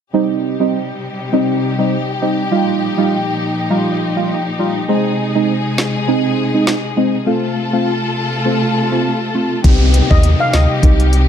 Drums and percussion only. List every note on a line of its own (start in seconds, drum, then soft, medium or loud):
5.78 snare loud
6.67 snare loud
9.64 kick loud
9.64 closed hi-hat medium
9.94 closed hi-hat medium
10.11 kick loud
10.23 closed hi-hat medium
10.53 snare loud
10.53 closed hi-hat medium
10.83 kick loud
10.83 closed hi-hat medium
11.00 closed hi-hat medium
11.13 closed hi-hat medium